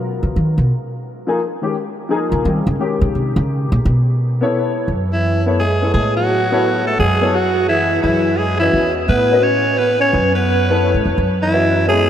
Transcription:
0.00 0.62 F#3 soft
0.00 0.62 B3 soft
0.00 0.62 F4 soft
0.00 0.63 A#4 medium
0.23 0.34 C#3 medium
0.36 0.57 D#3 medium
0.58 0.69 B2 medium
1.27 1.38 F3 medium
1.27 1.38 A#3 medium
1.27 1.38 D#4 medium
1.27 1.39 G#4 medium
1.62 1.73 D#3 medium
1.62 1.73 G#3 soft
1.62 1.74 C#4 soft
1.62 1.74 G4 medium
2.09 2.43 F3 medium
2.09 2.43 A#3 medium
2.09 2.43 D#4 medium
2.09 2.44 G#4 medium
2.32 2.44 C#3 medium
2.44 2.66 D#3 medium
2.44 2.64 G3 soft
2.44 2.65 C4 soft
2.44 2.65 F4 soft
2.44 2.65 A#4 soft
2.67 2.74 C#3 medium
2.79 3.76 D#3 soft
2.79 3.77 G#3 soft
2.79 3.77 C#4 soft
2.79 3.77 G4 medium
3.01 3.14 C#3 medium
3.15 3.36 C3 medium
3.36 3.69 C#3 loud
3.72 3.84 A#2 medium
3.85 4.38 B2 medium
4.41 4.86 B3 medium
4.41 4.87 E4 medium
4.41 4.87 A4 medium
4.41 4.87 C#5 medium
4.88 5.89 F#2 medium
5.12 5.44 E3 medium
5.12 5.45 E4 medium
5.46 5.57 B3 medium
5.46 5.58 E4 medium
5.46 5.58 A4 medium
5.46 5.58 C#5 medium
5.59 5.91 G#3 medium
5.59 5.92 G#4 medium
5.81 6.26 B3 medium
5.81 6.27 E4 medium
5.81 6.27 A4 soft
5.81 6.27 C#5 medium
5.93 6.95 A2 medium
5.93 6.15 G#3 medium
5.93 6.15 G#4 medium
6.16 6.82 F#3 medium
6.16 6.82 F#4 medium
6.51 6.96 B3 medium
6.51 6.97 E4 medium
6.51 6.97 A4 medium
6.51 6.97 C#5 medium
6.86 6.97 A3 medium
6.86 6.98 A4 medium
6.98 8.00 F#2 medium
6.98 7.34 G#3 medium
6.98 7.36 G#4 medium
7.21 7.32 B3 medium
7.21 7.33 E4 medium
7.21 7.33 A4 medium
7.21 7.33 C#5 medium
7.32 7.67 F#3 medium
7.32 7.68 F#4 medium
7.68 8.01 E3 medium
7.68 8.01 E4 medium
8.02 8.69 F#2 medium
8.02 8.39 E3 medium
8.02 8.39 E4 medium
8.38 8.59 G#3 medium
8.38 8.59 G#4 medium
8.59 8.93 E3 medium
8.59 9.06 C#4 soft
8.59 8.93 E4 medium
8.59 9.06 F#4 soft
8.59 9.06 B4 soft
8.59 9.07 D#5 medium
8.73 9.06 E2 medium
9.08 10.09 A2 medium
9.08 9.43 B3 medium
9.08 9.45 B4 medium
9.31 9.42 C#4 medium
9.31 9.42 F#4 medium
9.31 9.43 B4 medium
9.31 9.43 D#5 medium
9.42 9.80 C#4 medium
9.42 9.79 C#5 medium
9.78 9.99 B3 medium
9.78 10.00 B4 medium
10.00 10.33 C#4 medium
10.00 10.33 C#5 medium
10.13 10.91 F#2 medium
10.35 11.01 B3 medium
10.35 11.01 B4 medium
10.70 11.15 B3 medium
10.70 11.15 E4 medium
10.70 11.16 A4 medium
10.70 11.16 C#5 medium
10.94 11.05 G#2 medium
11.06 11.17 F2 medium
11.18 12.10 F#2 medium
11.41 11.85 E3 medium
11.41 11.85 E4 medium
11.52 11.86 C#4 medium
11.52 11.86 F#4 soft
11.52 11.87 B4 soft
11.52 11.87 D#5 medium
11.87 12.10 G#3 medium
11.87 12.08 B3 medium
11.87 12.08 E4 medium
11.87 12.10 G#4 medium
11.87 12.08 A4 soft
11.87 12.08 C#5 medium

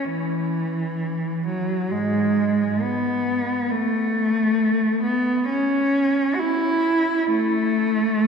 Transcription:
0.00 0.12 C#4 medium
0.11 1.44 E3 medium
1.47 1.91 F#3 medium
1.91 2.77 G#2 medium
1.91 2.81 G#3 medium
2.82 3.72 B3 medium
3.71 5.03 A3 medium
5.03 5.48 B3 medium
5.50 6.33 C#4 medium
6.35 6.41 F#4 soft
6.39 7.29 E4 medium
7.30 8.27 A3 medium

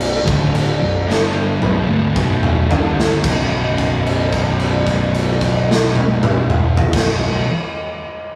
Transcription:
0.00 0.25 B0 medium
0.00 0.16 B1 medium
0.00 0.16 F#2 medium
0.00 crash medium
0.25 0.78 D1 medium
0.25 0.78 D2 medium
0.25 0.79 A2 medium
0.25 0.79 D3 medium
0.25 kick loud
0.55 crash medium
0.79 1.07 B0 medium
0.79 1.07 B1 medium
0.79 1.07 F#2 medium
1.07 1.59 G1 medium
1.07 1.60 G2 medium
1.07 1.60 D3 medium
1.07 1.60 G3 loud
1.07 snare medium
1.60 1.87 B0 loud
1.60 1.87 B1 medium
1.60 1.87 F#2 medium
1.60 mid tom medium
1.88 2.15 D1 medium
1.88 2.14 D2 medium
1.88 2.14 A2 medium
2.15 2.67 B0 medium
2.15 2.68 B1 medium
2.15 2.68 F#2 medium
2.15 2.69 B2 loud
2.15 kick medium
2.43 mid tom medium
2.70 3.21 G1 medium
2.70 3.22 G2 medium
2.70 3.23 D3 medium
2.70 3.23 G3 loud
2.70 floor tom medium
3.00 snare medium
3.22 6.76 B0 medium
3.22 6.79 B1 medium
3.22 6.80 F#2 medium
3.22 kick loud
3.22 crash medium
3.26 6.81 B2 loud
3.78 kick medium
3.78 crash soft
4.07 crash soft
4.33 kick medium
4.33 crash soft
4.60 crash soft
4.87 kick medium
4.87 crash soft
5.14 crash medium
5.41 kick medium
5.41 crash soft
5.71 snare medium
5.96 high tom medium
6.23 mid tom loud
6.50 mid tom loud
6.77 floor tom loud
6.92 7.39 B0 medium
6.92 7.41 B1 medium
6.92 7.43 F#2 loud
6.92 7.43 B2 loud
6.92 kick loud
6.92 crash loud
6.96 snare loud

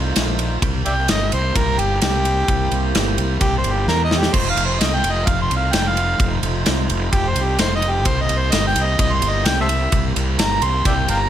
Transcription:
0.00 0.13 C2 medium
0.00 0.60 A3 medium
0.00 0.60 D#4 medium
0.00 0.60 F4 medium
0.00 0.60 C5 medium
0.16 0.57 A#1 medium
0.16 snare loud
0.16 ride loud
0.39 ride medium
0.62 0.83 C2 medium
0.62 4.30 A#3 medium
0.62 4.30 E4 medium
0.62 4.30 G4 medium
0.62 4.30 C5 medium
0.62 kick loud
0.62 ride loud
0.86 1.06 C2 medium
0.86 0.94 D5 medium
0.86 0.92 E5 medium
0.86 1.08 G5 medium
0.86 ride medium
1.08 1.30 G1 medium
1.08 1.32 D#5 loud
1.08 snare loud
1.08 ride loud
1.32 1.53 C2 medium
1.32 1.58 C5 medium
1.32 ride medium
1.56 1.76 C2 medium
1.56 1.80 A#4 medium
1.56 kick loud
1.56 ride medium
1.78 1.99 G1 medium
1.78 2.01 G4 medium
1.78 ride medium
2.02 2.43 C2 medium
2.02 2.92 G4 loud
2.02 snare loud
2.02 ride medium
2.25 ride medium
2.48 2.69 C2 medium
2.48 kick loud
2.48 ride medium
2.72 2.92 C2 medium
2.72 ride medium
2.95 3.15 G1 medium
2.95 snare loud
2.95 ride medium
3.18 3.38 C2 medium
3.18 ride medium
3.41 3.61 C2 medium
3.41 3.56 G4 loud
3.41 kick loud
3.41 ride medium
3.58 3.74 C5 medium
3.64 3.84 G1 medium
3.64 ride medium
3.73 3.87 G4 medium
3.87 4.28 E2 medium
3.87 4.03 A#4 medium
3.87 snare medium
4.05 4.20 D#5 medium
4.11 snare medium
4.18 4.35 G4 medium
4.23 snare medium
4.33 4.54 F1 medium
4.33 8.02 A3 medium
4.33 8.02 D#4 medium
4.33 8.02 F4 medium
4.33 8.02 C5 medium
4.33 4.49 C5 medium
4.33 kick loud
4.33 crash loud
4.50 4.64 F5 medium
4.57 4.77 F1 medium
4.57 ride medium
4.65 4.82 C5 medium
4.80 5.01 C2 medium
4.80 4.97 D#5 medium
4.80 snare loud
4.80 ride loud
4.95 5.13 G5 medium
5.04 5.24 F1 medium
5.04 ride medium
5.11 5.28 D#5 medium
5.27 5.48 F1 medium
5.27 5.41 F5 medium
5.27 kick loud
5.27 ride loud
5.42 5.56 C6 medium
5.51 5.71 C2 medium
5.51 ride medium
5.57 5.75 F5 medium
5.73 6.14 F1 medium
5.73 5.90 G5 medium
5.73 snare loud
5.73 ride loud
5.88 6.34 F5 loud
5.97 ride medium
6.20 6.40 F1 medium
6.20 kick loud
6.20 ride medium
6.43 6.63 F1 medium
6.43 ride medium
6.66 6.87 C2 medium
6.66 snare loud
6.66 ride medium
6.89 7.10 F1 medium
6.89 ride medium
7.13 7.33 F1 medium
7.13 7.29 G4 loud
7.13 kick loud
7.13 ride medium
7.28 7.45 C5 loud
7.36 7.56 C2 medium
7.36 ride medium
7.44 7.59 G4 medium
7.59 8.06 F1 medium
7.59 7.75 C5 medium
7.59 snare loud
7.59 ride medium
7.76 7.93 D#5 loud
7.82 ride medium
7.91 8.08 G4 medium
8.05 8.26 C2 medium
8.05 11.29 A#3 medium
8.05 11.29 E4 medium
8.05 11.29 G4 medium
8.05 11.29 C5 medium
8.05 8.23 C5 loud
8.05 kick loud
8.05 ride loud
8.22 8.39 D#5 loud
8.29 8.50 C2 medium
8.29 ride medium
8.38 8.53 C5 medium
8.52 8.73 G1 medium
8.52 8.67 D#5 medium
8.52 snare loud
8.52 ride loud
8.67 8.85 G5 loud
8.76 8.96 C2 medium
8.76 ride medium
8.83 8.98 D#5 medium
8.99 9.20 C2 medium
8.99 9.15 D#5 medium
8.99 kick loud
8.99 ride loud
9.14 9.31 C6 loud
9.22 9.42 G1 medium
9.22 ride medium
9.30 9.48 D#5 medium
9.45 9.86 C2 medium
9.45 9.60 G5 medium
9.45 snare loud
9.45 ride loud
9.61 9.67 A4 medium
9.61 9.67 C5 medium
9.61 10.06 E5 loud
9.69 ride medium
9.92 10.13 C2 medium
9.92 kick loud
9.92 ride medium
10.16 10.36 C2 medium
10.16 ride medium
10.38 10.59 G1 medium
10.38 10.65 A#5 loud
10.38 snare loud
10.38 ride medium
10.62 10.83 C2 medium
10.62 10.85 C6 loud
10.62 ride medium
10.85 11.06 C2 medium
10.85 10.93 D5 medium
10.85 10.93 E5 medium
10.85 11.09 G5 medium
10.85 kick loud
10.85 ride medium
11.08 11.29 G1 medium
11.08 11.18 F5 medium
11.08 11.18 G5 medium
11.08 11.29 A#5 medium
11.08 ride medium

